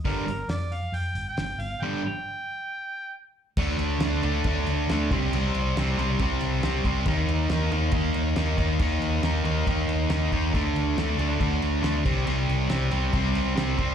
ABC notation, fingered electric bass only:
X:1
M:4/4
L:1/8
Q:1/4=138
K:Dphr
V:1 name="Fingered electric bass" clef=bass
G,,, G,,, F,,2 F,, G,,, G,,, G,,, | z8 | D,, D,, D,, D,, D,, D,, D,, C,, | C,, C,, C,, C,, C,, C,, C,, C,, |
E,, E,, E,, E,, E,, E,, E,, E,, | E,, E,, E,, E,, E,, E,, E,, E,, | D,, D,, D,, D,, D,, D,, D,, C,, | C,, C,, C,, C,, C,, C,, C,, C,, |]